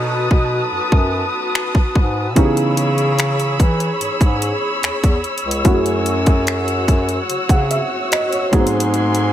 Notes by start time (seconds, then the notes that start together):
Already playing: B2 F#3 B3 C#4 D#4 F#4 A4 B4 A5 D#6
0.31 B2, kick
0.72 F#2
0.92 F#2, kick
1.55 finger snap
1.75 kick
1.95 G#2, kick
2.35 C#3 E3 B3 C#4 D#4 G4 G#4 C#5 B5 E6, kick, closed hi-hat
2.45 G#4
2.57 closed hi-hat
2.77 closed hi-hat
2.98 closed hi-hat
3.19 finger snap, closed hi-hat
3.40 closed hi-hat
3.60 E3, kick, closed hi-hat
3.80 closed hi-hat
4.01 G#2, closed hi-hat
4.21 G#2, kick, closed hi-hat
4.42 closed hi-hat
4.83 E2, finger snap, closed hi-hat
5.04 E2, kick, closed hi-hat
5.24 closed hi-hat
5.38 closed hi-hat
5.45 C#2
5.51 closed hi-hat
5.64 F#2 F#3 A3 C#4 E4 F#4 F#5, kick, closed hi-hat
5.74 G#4
5.86 closed hi-hat
6.06 closed hi-hat
6.26 kick, closed hi-hat
6.47 finger snap, closed hi-hat
6.68 closed hi-hat
6.88 F#2, kick, closed hi-hat
7.09 closed hi-hat
7.30 C#3, closed hi-hat
7.49 C#3 F#5, kick, closed hi-hat
7.71 E5, closed hi-hat
8.12 D#5, finger snap, closed hi-hat
8.32 C#5, closed hi-hat
8.52 G#2 F#3 A3 B3 D#4 G#4 G#5 C6, kick, closed hi-hat
8.60 C4
8.67 closed hi-hat
8.80 closed hi-hat
8.94 closed hi-hat
9.15 closed hi-hat